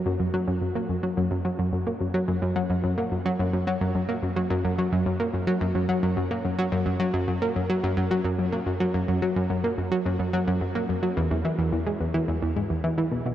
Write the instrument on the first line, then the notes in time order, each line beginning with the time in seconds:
synth arpeggio sound
0.06 F#2
0.20 F#2
0.34 F#3
0.48 F#2
0.62 F#2
0.75 A#3
0.89 F#2
1.03 F#3
1.17 F#2
1.31 F#2
1.45 F#3
1.59 F#2
1.73 F#2
1.87 A#3
2.01 F#2
2.14 F#3
2.28 F#2
2.42 F#2
2.56 F#3
2.70 F#2
2.84 F#2
2.98 A#3
3.11 F#2
3.25 F#3
3.39 F#2
3.53 F#2
3.67 F#3
3.81 F#2
3.95 F#2
4.09 A#3
4.23 F#2
4.36 F#3
4.50 F#2
4.65 F#2
4.78 F#3
4.92 F#2
5.06 F#2
5.20 A#3
5.34 F#2
5.47 F#3
5.61 F#2
5.75 F#2
5.89 F#3
6.03 F#2
6.17 F#2
6.31 A#3
6.45 F#2
6.59 F#3
6.72 F#2
6.86 F#2
7.00 F#3
7.14 F#2
7.28 F#2
7.42 A#3
7.56 F#2
7.69 F#3
7.83 F#2
7.97 F#2
8.11 F#3
8.25 F#2
8.39 F#2
8.53 A#3
8.67 F#2
8.80 F#3
8.94 F#2
9.08 F#2
9.22 F#3
9.36 F#2
9.50 F#2
9.64 A#3
9.78 F#2
9.92 F#3
10.06 F#2
10.19 F#2
10.33 F#3
10.47 F#2
10.61 F#2
10.75 A#3
10.89 F#2
11.03 F#3
11.17 E2
11.31 E2
11.45 E3
11.58 E2
11.72 E2
11.86 G#3
12.00 E2
12.14 E3
12.28 E2
12.42 E2
12.56 G#2
12.70 E2
12.84 E3
12.98 E3
13.12 B2
13.26 B2